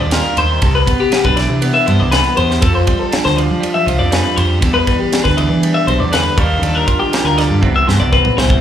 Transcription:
Already playing: D#3 G3 D4 F4
0.00 D#2 D5
0.11 F4 A#4, snare, ride
0.37 D#2 D#3 C5, ride
0.62 C2 C3 A4, kick, ride
0.75 B4
0.86 B3, kick, ride
1.00 G4
1.11 B3, snare, ride
1.24 B1 D4 B4, kick
1.36 E3 D5, snare, ride
1.50 C3
1.62 B3, ride
1.74 E5
1.86 G2 E3 C5, ride
2.00 C2 D5
2.11 B3 B4, snare, ride
2.36 E2 G4 C5, ride
2.51 snare
2.61 F2 A4, kick, ride
2.75 C5
2.87 G3, kick, ride
2.99 A4
3.12 D4, snare, ride
3.25 D2 C5, snare
3.36 F3 D5, ride
3.51 F3
3.61 G3, ride
3.74 E5
3.86 C2 F3 C5, ride
3.99 F2 D5
4.11 G3 B4, snare, ride
4.36 F2 G4 C5, ride
4.61 E2 A4, kick, ride
4.74 B4
4.87 G3, kick, ride
4.99 G4
5.12 D4, snare, ride
5.24 D2 B4, kick, snare
5.37 E3 D5, ride
5.49 E3
5.63 G3, ride
5.74 E5
5.87 B1 C3 C5, ride
6.00 E2 D5
6.12 D3 B4, snare, ride
6.37 D#2 D#3 G3 D4 F4 C5, kick, ride
6.62 D#2 D4 A4, ride
6.75 A#4
6.87 F4, kick, ride
7.00 G4
7.11 D#3, snare, ride
7.24 D2 A#4
7.37 D3 D5, snare, ride
7.50 G2
7.61 C2 C3 E3 B3 C4, kick
7.76 E5
7.87 G2 B3 C5, snare
8.00 C2 D5
8.12 C4 B4, kick
8.25 mid tom
8.37 C2 E3 C5, snare
8.50 kick

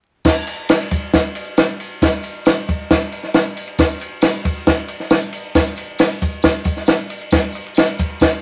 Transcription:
0.25 kick, snare, crash, tambourine
0.47 ride, tambourine
0.69 snare, ride, tambourine
0.91 kick, ride, tambourine
1.13 kick, snare, ride, tambourine
1.35 ride, tambourine
1.57 snare, ride, tambourine
1.80 ride, tambourine
2.02 kick, snare, ride, tambourine
2.23 ride, tambourine
2.45 snare, ride, tambourine
2.69 kick, ride, tambourine
2.90 kick, snare, ride, tambourine
3.12 ride, tambourine
3.23 snare
3.34 snare, ride, tambourine
3.57 ride, tambourine
3.67 ride
3.78 kick, snare, ride, tambourine
4.00 ride, tambourine
4.21 snare, ride, tambourine
4.45 kick, ride, tambourine
4.67 kick, snare, ride, tambourine
4.88 ride, tambourine
5.00 snare
5.10 snare, ride, tambourine
5.33 ride, tambourine
5.55 kick, snare, ride, tambourine
5.76 ride, tambourine
5.98 snare, ride, tambourine
6.22 kick, ride, tambourine
6.42 kick, snare, ride, tambourine
6.64 kick, ride, tambourine
6.77 snare
6.86 snare, ride, tambourine
7.09 ride, tambourine
7.21 ride
7.31 kick, snare, ride, tambourine
7.52 ride, tambourine
7.66 ride
7.75 snare, ride, tambourine
7.98 kick, ride, tambourine
8.20 kick, snare, ride, tambourine

